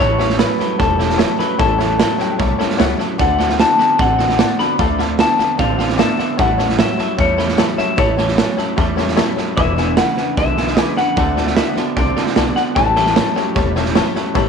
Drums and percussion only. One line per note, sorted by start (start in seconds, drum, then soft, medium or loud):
0.20 snare soft
0.30 snare soft
0.39 snare loud
0.39 hi-hat pedal loud
0.60 snare soft
0.80 kick loud
0.80 snare soft
1.00 snare soft
1.10 snare soft
1.19 snare loud
1.19 hi-hat pedal medium
1.39 snare soft
1.59 kick loud
1.59 snare soft
1.79 snare soft
2.00 snare loud
2.00 hi-hat pedal medium
2.20 snare soft
2.39 kick loud
2.39 snare soft
2.60 snare soft
2.70 snare soft
2.80 snare loud
2.80 hi-hat pedal medium
3.00 snare soft
3.19 kick loud
3.19 snare soft
3.39 snare soft
3.49 snare soft
3.60 snare loud
3.60 hi-hat pedal medium
3.79 snare soft
3.99 kick loud
3.99 snare soft
4.19 snare soft
4.29 snare soft
4.39 snare loud
4.39 hi-hat pedal medium
4.59 snare soft
4.79 kick loud
4.79 snare soft
4.99 snare soft
5.19 snare loud
5.19 hi-hat pedal medium
5.39 snare soft
5.59 kick loud
5.59 snare soft
5.79 snare soft
5.89 snare soft
5.99 snare loud
5.99 hi-hat pedal medium
6.19 snare soft
6.39 kick loud
6.39 snare soft
6.59 snare soft
6.69 snare soft
6.79 snare loud
6.79 hi-hat pedal medium
6.99 snare soft
7.18 kick loud
7.18 snare soft
7.39 snare soft
7.48 snare soft
7.58 snare loud
7.58 hi-hat pedal medium
7.78 snare soft
7.98 kick loud
7.98 snare soft
8.18 snare soft
8.28 snare soft
8.38 snare loud
8.38 hi-hat pedal medium
8.58 snare soft
8.78 kick loud
8.78 snare soft
8.98 snare soft
9.08 snare soft
9.18 snare loud
9.18 hi-hat pedal medium
9.38 snare soft
9.57 kick loud
9.57 snare soft
9.77 snare soft
9.97 snare loud
9.97 hi-hat pedal medium
10.17 snare soft
10.37 kick loud
10.37 snare soft
10.57 snare soft
10.67 snare soft
10.77 snare loud
10.77 hi-hat pedal medium
10.97 snare soft
11.17 kick loud
11.17 snare soft
11.37 snare soft
11.47 snare soft
11.57 snare loud
11.57 hi-hat pedal medium
11.77 snare soft
11.97 kick loud
11.97 snare soft
12.17 snare soft
12.26 snare soft
12.36 snare loud
12.36 hi-hat pedal medium
12.56 snare soft
12.76 kick loud
12.76 snare soft
12.96 snare soft
13.06 snare soft
13.16 snare loud
13.16 hi-hat pedal medium
13.36 snare soft
13.56 kick loud
13.56 snare soft
13.76 snare soft
13.86 snare soft
13.95 snare loud
13.95 hi-hat pedal medium
14.16 snare soft
14.35 kick loud
14.35 snare soft